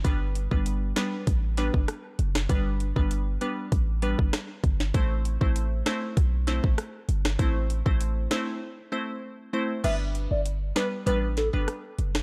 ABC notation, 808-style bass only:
X:1
M:4/4
L:1/16
Q:1/4=98
K:G
V:1 name="808-style bass" clef=bass
G,,,3 G,,,3 z2 A,,,3 G,,, z2 F,,,2 | G,,,3 G,,,3 z2 A,,,3 G,,, z2 G,,,2 | A,,,3 A,,,3 z2 B,,,3 A,,, z2 G,,,2 | A,,,3 A,,,3 z8 z2 |
G,,,3 G,,,3 z2 A,,,3 G,,, z2 F,,,2 |]